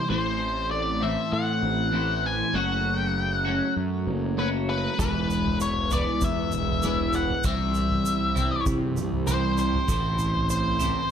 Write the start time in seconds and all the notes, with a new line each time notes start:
0.09 A1 A2 E3 A3 C4 E4 C5
0.71 D5
1.01 A2 E3 A3 C4 E4 E5
1.32 A2 F#5
1.62 A1
1.92 A2 E3 A3 C4 E4
2.26 G#5
2.53 F#1 F#3 A3 C#4 F#4 F#5
2.97 G5
3.08 F#5
3.45 F#3 A3 C#4 F#4
3.76 F#2
4.07 F#1
4.37 F#3 A3 C#4 F#4 B4
4.70 B4
4.99 E1 E3 G#3 B3 E4 B4, kick, floor tom, shaker
5.30 shaker
5.46 floor tom
5.60 C#5, shaker
5.91 E3 G#3 B3 E4 D5, floor tom, shaker
6.21 E2 E5, kick, floor tom, mid tom, shaker
6.52 E1, shaker
6.68 floor tom
6.83 E3 G#3 B3 E4, floor tom, shaker
7.13 F#5, shaker
7.29 floor tom
7.44 C2 C3 E3 G3 C4 E4 E5, kick, floor tom, shaker
7.74 shaker
7.90 floor tom
8.05 shaker
8.35 C3 E3 G3 C4 E4, floor tom, shaker
8.66 C3, kick, floor tom, mid tom, shaker
8.97 C2, shaker
9.12 floor tom
9.27 C3 E3 G3 C4 E4 C5, floor tom, shaker
9.58 C5, shaker
9.73 floor tom
9.87 A1 A2 E3 A3 C4 E4, kick, floor tom, shaker
10.19 shaker
10.35 floor tom
10.50 C5, shaker
10.79 A2 E3 A3 C4 E4, floor tom, shaker